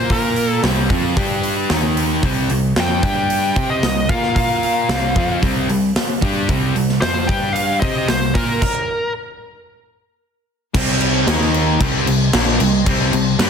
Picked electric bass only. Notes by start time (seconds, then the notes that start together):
Already playing: A#2
0.64 C2
0.90 F2
1.17 G2
1.70 D#2
2.23 C2
2.50 C2
2.76 F2
3.03 G2
3.56 C3
3.83 C2
4.10 A#2
4.89 C2
5.16 F2
5.43 C2
5.69 C2
6.22 G2
6.49 C2
6.75 C2
7.02 F2
7.29 G2
7.82 C3
8.08 C2
8.35 A#2
10.74 C2
11.27 D#2
11.80 C2
12.06 C2
12.33 A#1
12.60 C2
12.86 C2
13.13 C2
13.39 G2